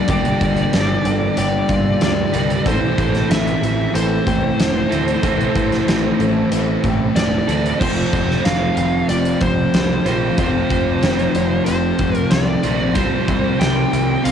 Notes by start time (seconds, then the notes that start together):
Already playing: A#3 D5 G5
0.07 G1 G2 D3 G3 A#3 G4 D5 E6, kick, closed hi-hat
0.11 D4 G4
0.25 closed hi-hat
0.41 G1, kick, closed hi-hat
0.56 closed hi-hat
0.72 G1 G2 D3 G3, snare, closed hi-hat
1.05 G1 A4, closed hi-hat
1.37 G1 G2 D3 G3 G4 D5, closed hi-hat
1.69 G1 D3 G3 F4, kick, closed hi-hat
2.01 D2 G2 D3 G3 D5, snare, closed hi-hat
2.33 C2 G2 D3 G3 A#3 D4 G4, closed hi-hat
2.50 closed hi-hat
2.64 A1 A2 E3 A3 C4 E4 A4 C5 E5 A5, kick, closed hi-hat
2.98 A1, kick, closed hi-hat
3.15 snare, closed hi-hat
3.30 A1 A2 E3 A3 E5, snare, closed hi-hat
3.47 closed hi-hat
3.62 A1 A4, closed hi-hat
3.94 A1 A2 E3 A3 A4 C5, closed hi-hat
4.26 A1 E3 A3 G4, kick, closed hi-hat
4.57 E1 A2 E3 A3, snare, closed hi-hat
4.89 D2 A2 E3 C4 E4 A4, closed hi-hat
5.08 closed hi-hat
5.21 A1 A2 E3 A3 C4 E4 A4, kick, closed hi-hat
5.26 A4
5.41 closed hi-hat
5.55 A1, kick, closed hi-hat
5.72 snare, closed hi-hat
5.86 A1 A2 E3 A3, snare, closed hi-hat
6.19 A1 A4, closed hi-hat
6.50 A1 A2 E3 A3 A4, closed hi-hat
6.83 A1 E3 A3 G4, kick, closed hi-hat
7.15 E1 A2 E3 A3 D5, snare, closed hi-hat
7.48 D2 E3 C4 E4 A4, closed hi-hat
7.52 A2
7.66 closed hi-hat
7.79 F1 F2 C3 F3 A3 C4 G4 C5 F5 A5 C6, kick, crash
7.83 F4
8.13 F1, kick, closed hi-hat
8.31 snare
8.44 F1 F2 C3 F3 F5, snare, closed hi-hat
8.77 F1, closed hi-hat
9.08 F1 F2 C3 F3 D5, closed hi-hat
9.25 closed hi-hat
9.40 F1 C3 F3 C5, kick, closed hi-hat
9.73 C2 F2 C3 F3, snare, closed hi-hat
10.06 A#1 A3 C4 F4 C5, closed hi-hat
10.10 F3
10.37 F1 F2 C3 F3 A3 C4 C5, kick, closed hi-hat
10.42 F4
10.70 F1, kick, closed hi-hat
11.01 F1 F2 C3 F3, snare, closed hi-hat
11.19 closed hi-hat
11.35 F1, closed hi-hat
11.65 F1 F2 C3 C5, closed hi-hat
11.70 F3
11.98 F1 C3 F3, kick, closed hi-hat
12.15 A#4, closed hi-hat
12.30 C2 F2 C3 F3 D5, snare, closed hi-hat
12.63 A#1 A3 C4 F4, closed hi-hat
12.67 F3
12.94 C2 C3 F3 G3 C4 F4 C5 G5, kick, closed hi-hat
13.28 C2, kick, closed hi-hat
13.59 C2 C3 G3 C4 G5, snare, closed hi-hat
13.93 C2, closed hi-hat
14.23 C2 C3 G3 C4 F5, closed hi-hat